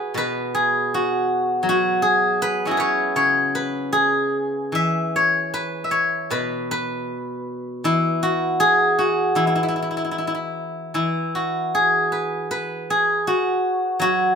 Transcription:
0.00 1.25 E4 medium
0.00 0.94 F#4 medium
0.00 0.54 G#4 medium
0.00 0.17 B4 medium
0.14 2.41 B2 soft
0.14 2.22 B4 medium
0.55 2.02 G#4 medium
0.94 1.69 F#4 medium
1.63 3.93 F#3 soft
1.69 2.67 F#4 medium
2.02 2.71 G#4 medium
2.42 2.77 B4 medium
2.65 5.55 C#4 soft
2.65 5.28 E4 soft
2.65 5.11 F#4 soft
2.71 3.92 G#4 soft
2.77 3.55 B4 soft
2.77 3.16 C#5 medium
3.16 4.74 C#3 soft
3.16 5.07 C#5 medium
3.55 5.53 B4 medium
3.93 6.19 G#4 medium
4.72 7.09 E3 soft
4.72 5.84 E5 medium
5.16 5.91 C#5 medium
5.54 6.31 B4 medium
5.84 7.57 E5 soft
5.91 7.82 C#5 medium
6.30 7.85 B2 soft
6.30 6.71 B4 medium
6.71 8.76 B4 medium
7.84 9.34 E3 soft
7.84 9.36 E4 medium
8.23 8.98 F#4 medium
8.60 10.87 G#4 medium
8.99 11.35 F#4 medium
9.35 10.93 E3 soft
9.35 9.47 E4 medium
9.47 9.55 E4 soft
9.55 9.63 E4 soft
9.63 9.68 E4 soft
9.68 9.76 E4 soft
9.76 9.82 E4 soft
9.82 9.90 E4 soft
9.91 9.96 E4 soft
9.97 10.04 E4 soft
10.05 10.11 E4 soft
10.11 10.18 E4 soft
10.18 10.27 E4 soft
10.27 10.34 E4 soft
10.35 10.94 E4 soft
10.94 13.26 E3 soft
10.94 13.56 E4 medium
11.35 13.27 F#4 medium
11.75 12.90 G#4 medium
12.12 12.50 B4 medium
12.51 14.35 B4 medium
12.90 14.35 G#4 medium
13.27 14.01 F#4 medium
14.00 14.35 F#3 medium
14.00 14.35 F#4 medium

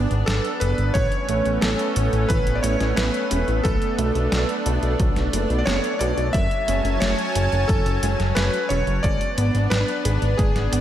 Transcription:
0.00 0.26 B3 medium
0.00 6.30 B3 medium
0.00 0.92 D4 medium
0.00 0.33 G#4 medium
0.11 0.24 G#1 medium
0.11 closed hi-hat soft
0.26 0.41 G#1 medium
0.26 0.43 D4 medium
0.26 0.62 A4 medium
0.26 snare loud
0.26 closed hi-hat medium
0.45 closed hi-hat soft
0.60 0.74 F#1 medium
0.60 0.77 G#4 medium
0.60 0.96 B4 medium
0.60 closed hi-hat loud
0.78 0.91 G#1 medium
0.78 closed hi-hat soft
0.94 1.08 A1 loud
0.94 1.27 E3 medium
0.94 6.30 A3 medium
0.94 3.62 C#4 medium
0.94 1.64 C#5 loud
0.94 kick loud
0.94 closed hi-hat medium
1.12 closed hi-hat soft
1.29 1.42 A1 medium
1.29 1.44 A3 medium
1.29 closed hi-hat medium
1.46 1.59 A1 medium
1.46 closed hi-hat soft
1.61 1.75 A1 loud
1.61 1.88 B3 medium
1.61 2.31 A4 medium
1.61 snare loud
1.61 closed hi-hat medium
1.79 closed hi-hat soft
1.96 2.09 A1 medium
1.96 2.22 C#4 medium
1.96 closed hi-hat medium
2.13 2.26 A1 medium
2.13 closed hi-hat soft
2.29 2.43 A1 medium
2.29 2.45 E3 medium
2.29 2.57 B4 loud
2.29 kick loud
2.29 closed hi-hat medium
2.47 2.60 A1 medium
2.47 closed hi-hat soft
2.55 2.63 D5 medium
2.63 2.77 A1 medium
2.63 2.96 A3 medium
2.63 2.98 C#5 medium
2.63 closed hi-hat loud
2.81 2.93 A1 medium
2.81 snare soft
2.81 closed hi-hat soft
2.96 3.10 A1 loud
2.96 3.13 B3 medium
2.96 3.66 B4 loud
2.96 snare loud
2.96 closed hi-hat medium
3.14 closed hi-hat soft
3.31 3.44 E1 medium
3.31 3.47 C#4 medium
3.31 closed hi-hat medium
3.48 3.61 A1 medium
3.48 closed hi-hat soft
3.64 3.78 B1 loud
3.64 3.97 F#3 medium
3.64 6.32 D4 medium
3.64 5.55 A4 loud
3.64 kick loud
3.64 closed hi-hat medium
3.82 closed hi-hat soft
3.98 4.11 B1 medium
3.98 4.14 A3 loud
3.98 closed hi-hat medium
4.15 4.28 B1 medium
4.15 closed hi-hat soft
4.32 4.45 B1 loud
4.32 4.58 B3 medium
4.32 snare loud
4.32 closed hi-hat medium
4.49 closed hi-hat soft
4.66 4.79 B1 medium
4.66 4.92 D4 medium
4.66 closed hi-hat medium
4.83 4.96 B1 medium
4.83 closed hi-hat soft
5.00 5.12 B1 medium
5.00 5.15 F#3 medium
5.00 kick loud
5.00 closed hi-hat medium
5.16 5.29 B1 medium
5.16 snare soft
5.16 closed hi-hat soft
5.33 5.46 F#1 medium
5.33 5.59 F#3 medium
5.33 closed hi-hat medium
5.50 5.63 B1 medium
5.50 closed hi-hat soft
5.59 5.66 D5 medium
5.66 5.80 F#1 loud
5.66 5.99 B3 loud
5.66 6.01 C#5 loud
5.66 snare loud
5.66 closed hi-hat medium
5.84 closed hi-hat soft
5.99 6.14 B1 medium
5.99 6.26 A4 medium
5.99 6.35 D5 loud
5.99 closed hi-hat medium
6.18 6.30 B1 medium
6.18 closed hi-hat soft
6.33 6.47 F#1 loud
6.33 6.66 F#3 medium
6.33 9.02 F#3 medium
6.33 9.02 C#4 medium
6.33 7.03 E5 loud
6.33 9.02 G#5 medium
6.33 9.02 A5 medium
6.33 kick loud
6.33 closed hi-hat medium
6.51 closed hi-hat soft
6.68 6.81 F#1 loud
6.68 6.84 G#3 medium
6.68 closed hi-hat medium
6.85 6.98 F#1 medium
6.85 closed hi-hat soft
7.00 7.15 F#1 loud
7.00 7.28 A3 medium
7.00 7.65 C#5 loud
7.00 snare loud
7.00 closed hi-hat medium
7.19 closed hi-hat soft
7.35 7.49 F#1 medium
7.35 7.61 C#4 medium
7.35 closed hi-hat medium
7.52 7.65 F#1 medium
7.52 closed hi-hat soft
7.68 7.82 F#1 medium
7.68 7.85 F#3 medium
7.68 8.00 A4 medium
7.68 kick loud
7.68 closed hi-hat medium
7.86 7.99 F#1 medium
7.86 closed hi-hat soft
8.03 8.16 F#1 medium
8.03 8.35 G#3 medium
8.03 closed hi-hat medium
8.20 8.33 F#1 medium
8.20 snare soft
8.20 closed hi-hat soft
8.35 8.50 F#1 loud
8.35 8.52 A3 medium
8.35 8.71 B4 medium
8.35 snare loud
8.35 closed hi-hat medium
8.54 closed hi-hat soft
8.69 8.83 E1 medium
8.69 8.86 C#4 medium
8.69 9.04 C#5 loud
8.69 closed hi-hat medium
8.87 9.00 F#1 medium
8.87 closed hi-hat soft
9.03 9.17 G#1 loud
9.03 9.36 G#3 medium
9.03 10.81 B3 medium
9.03 10.81 D4 medium
9.03 9.73 D5 loud
9.03 kick loud
9.03 closed hi-hat medium
9.21 closed hi-hat soft
9.38 9.51 G#1 loud
9.38 9.53 B3 loud
9.38 closed hi-hat medium
9.55 9.68 G#1 medium
9.55 closed hi-hat soft
9.70 9.84 G#1 loud
9.70 9.97 D4 medium
9.70 10.40 B4 medium
9.70 snare loud
9.70 closed hi-hat medium
9.88 closed hi-hat soft
10.05 10.18 G#1 medium
10.05 10.31 G#4 medium
10.05 closed hi-hat medium
10.22 10.35 G#1 medium
10.22 closed hi-hat soft
10.37 10.52 G#1 loud
10.37 10.54 G#3 medium
10.37 10.70 G#4 medium
10.37 kick loud
10.37 closed hi-hat medium
10.56 10.69 G#1 medium
10.56 snare soft
10.56 closed hi-hat soft
10.73 10.81 G#1 medium
10.73 10.81 B3 medium
10.73 closed hi-hat medium

